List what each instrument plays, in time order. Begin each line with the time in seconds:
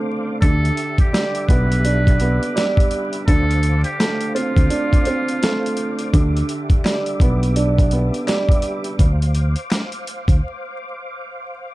Already playing: upright piano A3 C4 D4, tonewheel organ C5 F5 D6
0.42 fretless electric bass D2, upright piano D3, tonewheel organ G4 E5 D6, muted trumpet A4, kick, closed hi-hat
0.65 closed hi-hat
0.77 closed hi-hat
0.98 muted trumpet G4, kick, closed hi-hat
1.13 upright piano G3, snare, closed hi-hat
1.35 closed hi-hat
1.47 fretless electric bass B1, upright piano B3, muted trumpet B4, kick, closed hi-hat
1.72 closed hi-hat
1.85 upright piano D4, closed hi-hat
2.07 kick, closed hi-hat
2.20 upright piano B3, closed hi-hat
2.43 closed hi-hat
2.56 upright piano G3, snare, closed hi-hat
2.77 kick, closed hi-hat
2.91 closed hi-hat
3.13 closed hi-hat
3.27 fretless electric bass D2, upright piano D3, muted trumpet A4, tonewheel organ C5 F5, kick, closed hi-hat
3.51 closed hi-hat
3.63 closed hi-hat
3.84 muted trumpet G4, closed hi-hat
4.00 upright piano A3, snare, closed hi-hat
4.21 closed hi-hat
4.35 upright piano C4, muted trumpet F4, closed hi-hat
4.56 fretless electric bass D2, kick, closed hi-hat
4.70 upright piano D4, closed hi-hat
4.93 kick, closed hi-hat
5.05 upright piano C4, closed hi-hat
5.29 closed hi-hat
5.43 upright piano A3, snare, closed hi-hat
5.66 closed hi-hat
5.77 closed hi-hat
5.99 closed hi-hat
6.13 fretless electric bass D2, upright piano D3, tonewheel organ G4 E5, kick, closed hi-hat
6.37 closed hi-hat
6.49 closed hi-hat
6.70 kick, closed hi-hat
6.84 upright piano G3, finger snap, snare, closed hi-hat
7.06 closed hi-hat
7.20 fretless electric bass B1, upright piano B3, kick, closed hi-hat
7.43 closed hi-hat
7.56 upright piano D4, closed hi-hat
7.78 kick, closed hi-hat
7.91 upright piano B3, closed hi-hat
8.14 closed hi-hat
8.27 upright piano G3, finger snap, snare, closed hi-hat
8.49 kick, closed hi-hat
8.62 closed hi-hat
8.84 closed hi-hat
8.99 fretless electric bass D2, tonewheel organ C5 F5, kick, closed hi-hat
9.22 closed hi-hat
9.35 closed hi-hat
9.56 closed hi-hat
9.70 finger snap, snare, closed hi-hat
9.92 closed hi-hat
10.07 closed hi-hat
10.28 fretless electric bass D2, kick, closed hi-hat